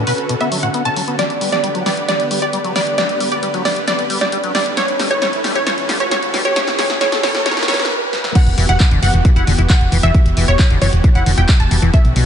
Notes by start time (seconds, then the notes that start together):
0.07 B2 D3 C#4 F#4 A4 B4, open hi-hat
0.18 closed hi-hat
0.29 B2 D3 C#4 F#4 A4, closed hi-hat
0.41 B3 E5, closed hi-hat
0.52 D3 F#3 C#4 F#4 A4, open hi-hat
0.63 A2 F#5, closed hi-hat
0.74 B3, closed hi-hat
0.85 B2 D3 C#4 F#4 A4 A5, closed hi-hat
0.96 F#3, open hi-hat
1.08 D3 B3 C#4 F#4 A4, closed hi-hat
1.19 D3 G3 B3 G4 B4 D5, snare, closed hi-hat, riser
1.30 D3 B3 G4 B4, closed hi-hat
1.41 D3 G3 B3 G4 B4, open hi-hat
1.52 G4 D5, snare, closed hi-hat
1.64 D3 G3 B3 G4 B4, closed hi-hat
1.75 F#3, closed hi-hat
1.86 D3 G3 B3 G4 B4 D5, snare, open hi-hat
1.97 closed hi-hat
2.08 D3 G3 B3 G4 B4 D5, snare, closed hi-hat
2.20 closed hi-hat
2.31 D3 G3 B3 G4 B4, open hi-hat
2.42 G4 D5, closed hi-hat
2.53 G3, closed hi-hat
2.64 D3 F#3 B3 G4 B4, closed hi-hat
2.76 G3 D5, snare, open hi-hat
2.87 D3 B3 G4 B4, closed hi-hat
2.98 D3 G3 B3 G4 B4 D5, snare, closed hi-hat
3.09 D3 B3 G4 B4, closed hi-hat
3.20 D3 G3 B3 G4 B4, open hi-hat
3.32 G4 D5, closed hi-hat
3.43 D3 G3 B3 G4 B4, closed hi-hat
3.54 F#3, closed hi-hat
3.65 D3 G3 B3 G4 B4 D5, snare, open hi-hat
3.76 closed hi-hat
3.88 D3 G3 B3 G4 B4 D5, snare, closed hi-hat
3.99 closed hi-hat
4.10 D3 G3 B3 G4 B4, open hi-hat
4.21 G4 D5, snare
4.32 G3, closed hi-hat
4.43 D3 F#3 B3 G4 B4, closed hi-hat
4.55 G3 D5, snare, open hi-hat
4.66 D3 B3 G4 B4, closed hi-hat
4.77 E3 G3 C#4 A4 B4 C#5, snare, closed hi-hat
4.88 E3 C#4 A4 B4, closed hi-hat
4.99 E3 G3 C#4 A4 B4, snare, open hi-hat
5.11 G4 C#5, closed hi-hat
5.22 E3 G3 C#4 A4 B4 C#5, snare, closed hi-hat
5.33 closed hi-hat
5.44 E3 G3 C#4 A4 B4, snare, open hi-hat
5.55 G4 C#5, closed hi-hat
5.67 E3 G3 C#4 A4 B4 C#5, snare, closed hi-hat
5.78 closed hi-hat
5.89 E3 G3 C#4 A4 B4, snare, open hi-hat
6.00 G4 C#5, closed hi-hat
6.11 G3 C#5, snare, closed hi-hat
6.23 E3 C#4 A4 B4, closed hi-hat
6.34 G3, snare, open hi-hat
6.45 E3 C#4 G4 A4 B4 C#5, closed hi-hat
6.56 E3 G3 C#4 G4 B4 C#5, snare, closed hi-hat
6.67 E3 C#4 G4 B4, snare, closed hi-hat
6.79 E3 G3 C#4 G4 B4 C#5, snare, open hi-hat
6.90 snare, closed hi-hat
7.01 E3 G3 C#4 G4 B4 C#5, snare, closed hi-hat
7.12 snare, closed hi-hat
7.23 E3 G3 C#4 G4 B4 C#5, snare, open hi-hat
7.35 snare, closed hi-hat
7.46 E3 G3 C#4 G4 B4 C#5, snare, closed hi-hat
7.51 snare
7.57 snare, closed hi-hat
7.63 snare
7.68 E3 G3 C#4 G4 B4 C#5, snare, open hi-hat
7.74 snare
7.79 snare, closed hi-hat
7.85 snare
8.13 snare
8.24 snare
8.35 E3 B3 F#4 G4 F#5, kick, closed hi-hat, crash
8.47 E1 E3 B3 F#4 G4, closed hi-hat
8.58 E1 E3 B3 F#4 G4, open hi-hat
8.69 E1 E4 F#5, closed hi-hat
8.80 E3 B3 F#4 G4, kick, clap, closed hi-hat
8.91 E1 D3, closed hi-hat
9.02 F#1 E3 B3 F#4 G4 F#5, open hi-hat
9.14 E1, closed hi-hat
9.25 E3 B3 F#4 G4, kick, closed hi-hat
9.36 E1 E4 F#5, closed hi-hat
9.47 E1 D3 E3 B3 F#4 G4, open hi-hat
9.58 E1 E4, closed hi-hat
9.70 E3 F#5, kick, clap, closed hi-hat
9.81 E1 E3 B3 F#4 G4, closed hi-hat
9.92 E1 E3, open hi-hat
10.03 E1 E3 B3 F#4 G4 E5, closed hi-hat
10.14 E3 B3 F#4 G4, kick, closed hi-hat
10.26 E1 E3 B3 F#4 G4, closed hi-hat
10.37 E1 E3 B3 F#4 G4, open hi-hat
10.48 E1 E4 C#5, closed hi-hat
10.59 E3 B3 F#4 G4, kick, clap, closed hi-hat
10.70 E1 D3, closed hi-hat
10.82 F#1 E3 B3 F#4 G4 C#5, open hi-hat
10.93 E1, closed hi-hat
11.04 E3 B3 F#4 G4, kick, closed hi-hat
11.15 E1 E4 F#5, closed hi-hat
11.26 E1 D3 E3 B3 F#4 G4, open hi-hat
11.38 E1 E4 G5, closed hi-hat
11.49 E3, kick, clap, closed hi-hat
11.60 E1 E3 B3 F#4 G4 A5, closed hi-hat
11.71 E1 E3, open hi-hat
11.82 E1 E3 B3 F#4 G4, closed hi-hat
11.94 B2 D3 B3 C#4 F#4 E5, kick, closed hi-hat
12.05 B1 D3 B3 C#4 F#4, closed hi-hat
12.16 B1 B2 D3 B3 C#4 F#4, open hi-hat